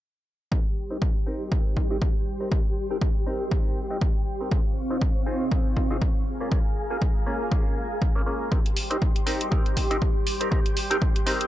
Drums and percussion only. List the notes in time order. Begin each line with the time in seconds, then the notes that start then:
0.52 kick
1.02 kick
1.52 kick
1.77 kick
2.02 kick
2.52 kick
3.02 kick
3.51 kick
4.01 kick
4.51 kick
5.02 kick
5.52 kick
5.77 kick
6.02 kick
6.52 kick
7.02 kick
7.52 kick
8.02 kick
8.52 kick
8.66 closed hi-hat
8.77 open hi-hat
8.91 closed hi-hat
9.02 kick
9.16 closed hi-hat
9.27 open hi-hat
9.41 closed hi-hat
9.52 kick
9.66 closed hi-hat
9.77 kick, open hi-hat
9.91 closed hi-hat
10.02 kick
10.27 open hi-hat
10.41 closed hi-hat
10.52 kick
10.66 closed hi-hat
10.77 open hi-hat
10.91 closed hi-hat
11.02 kick
11.16 closed hi-hat
11.27 open hi-hat
11.41 closed hi-hat